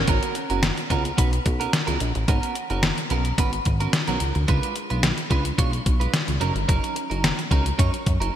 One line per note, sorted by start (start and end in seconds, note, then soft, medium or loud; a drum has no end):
0.08 0.19 G#1 loud
0.08 0.33 B3 medium
0.08 0.34 C#4 medium
0.08 0.34 F#4 medium
0.08 0.34 A#4 medium
0.08 kick loud
0.08 closed hi-hat medium
0.23 closed hi-hat medium
0.35 muted clean electric guitar stroke soft
0.35 closed hi-hat medium
0.50 0.72 F#1 medium
0.50 0.63 B3 soft
0.50 0.63 C#4 soft
0.50 0.62 F#4 medium
0.50 0.62 A#4 medium
0.50 closed hi-hat soft
0.63 snare loud
0.63 closed hi-hat medium
0.78 muted clean electric guitar stroke soft
0.78 closed hi-hat soft
0.90 1.12 C#2 medium
0.90 1.08 B3 medium
0.90 1.04 C#4 medium
0.90 1.04 F#4 medium
0.90 1.03 A#4 medium
0.90 kick medium
0.90 closed hi-hat medium
1.05 muted clean electric guitar stroke soft
1.05 closed hi-hat medium
1.17 1.40 B1 loud
1.17 1.35 B3 medium
1.17 1.32 C#4 medium
1.17 1.31 F#4 medium
1.17 1.31 B4 medium
1.17 kick medium
1.17 closed hi-hat loud
1.32 muted clean electric guitar stroke soft
1.32 closed hi-hat soft
1.45 1.67 B1 medium
1.45 muted clean electric guitar stroke soft
1.45 kick medium
1.45 closed hi-hat medium
1.60 1.71 B3 soft
1.60 1.72 C#4 soft
1.60 1.72 F#4 medium
1.60 1.72 A#4 medium
1.60 closed hi-hat medium
1.73 snare loud
1.73 closed hi-hat medium
1.87 1.98 C#2 medium
1.87 1.99 B3 medium
1.87 2.00 C#4 medium
1.87 2.00 F#4 medium
1.87 2.00 A#4 medium
1.87 closed hi-hat medium
2.00 2.12 A#1 medium
2.00 muted clean electric guitar stroke soft
2.00 closed hi-hat medium
2.15 2.26 A1 medium
2.15 muted clean electric guitar stroke soft
2.15 closed hi-hat soft
2.28 2.40 G#1 loud
2.28 2.54 B3 medium
2.28 2.54 C#4 medium
2.28 2.54 F#4 medium
2.28 2.54 A#4 medium
2.28 kick loud
2.28 closed hi-hat medium
2.43 closed hi-hat medium
2.55 muted clean electric guitar stroke soft
2.55 closed hi-hat medium
2.70 2.92 F#1 medium
2.70 2.83 B3 soft
2.70 2.83 C#4 medium
2.70 2.83 F#4 medium
2.70 2.82 A#4 medium
2.70 closed hi-hat soft
2.83 snare loud
2.83 closed hi-hat medium
2.98 muted clean electric guitar stroke soft
2.98 closed hi-hat soft
3.10 3.33 B1 medium
3.10 3.28 B3 medium
3.10 3.25 C#4 medium
3.10 3.25 F#4 medium
3.10 3.24 A#4 medium
3.10 closed hi-hat medium
3.25 muted clean electric guitar stroke soft
3.25 closed hi-hat medium
3.38 3.60 G#1 medium
3.38 3.55 B3 medium
3.38 3.52 C#4 medium
3.38 3.52 F#4 medium
3.38 3.52 B4 medium
3.38 kick loud
3.38 closed hi-hat medium
3.53 muted clean electric guitar stroke soft
3.53 closed hi-hat soft
3.65 3.88 G#1 medium
3.65 muted clean electric guitar stroke soft
3.65 kick medium
3.65 closed hi-hat medium
3.80 3.93 B3 soft
3.80 3.93 C#4 medium
3.80 3.93 F#4 medium
3.80 3.93 A#4 medium
3.80 closed hi-hat medium
3.93 muted clean electric guitar stroke soft
3.93 snare loud
3.93 closed hi-hat medium
4.08 4.18 B1 medium
4.08 4.20 B3 medium
4.08 4.21 C#4 medium
4.08 4.21 F#4 medium
4.08 4.21 A#4 medium
4.08 closed hi-hat medium
4.20 4.32 C#2 loud
4.20 muted clean electric guitar stroke soft
4.20 closed hi-hat medium
4.35 4.46 D2 loud
4.35 muted clean electric guitar stroke soft
4.35 closed hi-hat soft
4.48 4.60 C#2 loud
4.48 4.74 G#3 medium
4.48 4.74 D4 medium
4.48 4.74 F4 medium
4.48 4.74 B4 medium
4.48 kick loud
4.48 closed hi-hat medium
4.63 closed hi-hat medium
4.76 muted clean electric guitar stroke soft
4.76 closed hi-hat medium
4.90 5.12 B1 medium
4.90 5.03 G#3 soft
4.90 5.03 D4 medium
4.90 5.03 F4 soft
4.90 5.02 B4 medium
4.90 closed hi-hat soft
5.03 snare loud
5.03 closed hi-hat medium
5.17 muted clean electric guitar stroke soft
5.17 closed hi-hat soft
5.30 5.52 C#2 medium
5.30 5.48 G#3 medium
5.30 5.45 D4 medium
5.30 5.44 F4 medium
5.30 5.43 B4 medium
5.30 kick medium
5.30 closed hi-hat medium
5.45 muted clean electric guitar stroke soft
5.45 closed hi-hat medium
5.58 5.80 B1 medium
5.58 5.75 G#3 medium
5.58 5.72 D4 medium
5.58 5.72 F4 medium
5.58 5.72 C#5 medium
5.58 kick loud
5.58 closed hi-hat loud
5.73 muted clean electric guitar stroke soft
5.73 closed hi-hat soft
5.85 6.08 B1 medium
5.85 muted clean electric guitar stroke soft
5.85 kick medium
5.85 closed hi-hat medium
6.00 6.13 G#3 soft
6.00 6.13 D4 soft
6.00 6.13 F4 medium
6.00 6.12 B4 medium
6.00 closed hi-hat medium
6.14 snare loud
6.14 closed hi-hat medium
6.28 6.38 C#2 medium
6.28 muted clean electric guitar stroke soft
6.28 closed hi-hat medium
6.40 6.52 F#1 loud
6.40 6.58 F#3 medium
6.40 6.55 C#4 medium
6.40 6.54 D#4 medium
6.40 6.54 A#4 medium
6.40 closed hi-hat medium
6.55 6.66 G1 medium
6.55 muted clean electric guitar stroke soft
6.55 closed hi-hat soft
6.68 6.80 F#1 medium
6.68 6.94 F#3 medium
6.68 6.94 C#4 medium
6.68 6.94 D#4 medium
6.68 6.94 A#4 medium
6.68 kick loud
6.68 closed hi-hat medium
6.84 closed hi-hat medium
6.95 muted clean electric guitar stroke soft
6.95 closed hi-hat medium
7.10 7.32 F#1 medium
7.10 7.23 F#3 soft
7.10 7.23 C#4 medium
7.10 7.23 D#4 medium
7.10 7.22 A#4 medium
7.10 closed hi-hat soft
7.24 snare loud
7.24 closed hi-hat medium
7.38 muted clean electric guitar stroke soft
7.38 closed hi-hat soft
7.51 7.73 C#2 medium
7.51 7.68 F#3 medium
7.51 7.65 C#4 medium
7.51 7.65 D#4 medium
7.51 7.64 A#4 medium
7.51 kick medium
7.51 closed hi-hat medium
7.65 muted clean electric guitar stroke soft
7.65 closed hi-hat medium
7.78 7.90 F#2 loud
7.78 7.95 F#3 medium
7.78 7.93 C#4 medium
7.78 7.92 D#4 medium
7.78 7.93 C#5 medium
7.78 kick loud
7.78 closed hi-hat medium
7.93 muted clean electric guitar stroke soft
7.93 closed hi-hat soft
8.06 8.18 F#2 medium
8.06 muted clean electric guitar stroke soft
8.06 kick medium
8.06 closed hi-hat medium
8.20 8.31 F#1 medium
8.20 8.32 F#3 soft
8.20 8.33 C#4 medium
8.20 8.33 D#4 medium
8.20 8.33 A#4 medium
8.20 closed hi-hat medium